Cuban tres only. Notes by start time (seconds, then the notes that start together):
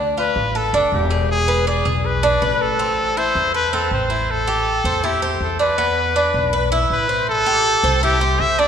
Already playing: D4
0.17 F4
0.55 A4
0.74 D4
1.10 G#4
1.48 B4
1.67 D5
1.85 G#4
2.23 D4
2.42 B4
2.79 C4
3.17 E4
3.54 A4
3.73 C4
4.10 E4
4.47 G4
4.85 C5
5.04 E4
5.22 C5
5.59 D4
5.78 B3
6.16 D4
6.53 B4
6.72 E4
7.09 C5
7.46 G4
7.84 C5
8.03 E4
8.21 C5
8.59 D4